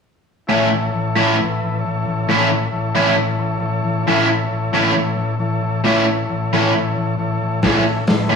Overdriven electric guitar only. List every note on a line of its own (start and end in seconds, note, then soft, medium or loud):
0.49 0.67 A2 loud
0.49 0.68 E3 loud
0.49 0.68 A3 medium
0.49 0.68 C#4 medium
0.49 0.68 E4 medium
1.16 1.34 A2 medium
1.16 1.35 E3 medium
1.16 1.35 A3 medium
1.16 1.35 C#4 loud
1.16 1.35 E4 loud
2.29 2.46 A2 medium
2.29 2.47 E3 medium
2.29 2.48 A3 loud
2.29 2.48 C#4 medium
2.29 2.48 E4 loud
2.95 3.13 A2 loud
2.95 3.13 E3 medium
2.95 3.14 A3 loud
2.95 3.14 C#4 loud
2.95 3.14 E4 loud
4.07 4.25 A2 medium
4.07 4.25 E3 loud
4.07 4.26 A3 medium
4.07 4.26 C#4 loud
4.07 4.27 E4 medium
4.73 4.91 A2 medium
4.73 4.92 E3 medium
4.73 4.92 A3 loud
4.73 4.92 C#4 loud
4.73 4.92 E4 loud
5.84 6.02 A2 medium
5.84 6.03 E3 loud
5.84 6.03 A3 medium
5.84 6.03 C#4 loud
5.84 6.03 E4 loud
6.53 6.70 A2 loud
6.53 6.70 E3 loud
6.53 6.71 A3 loud
6.53 6.71 C#4 medium
6.53 6.71 E4 loud
7.64 7.81 A2 medium
7.64 7.82 E3 loud
7.64 7.82 A3 loud
7.64 7.82 C#4 loud
7.64 7.82 E4 loud
8.30 8.36 A2 medium
8.30 8.36 E3 medium
8.30 8.36 A3 loud
8.30 8.36 C#4 loud
8.30 8.36 E4 medium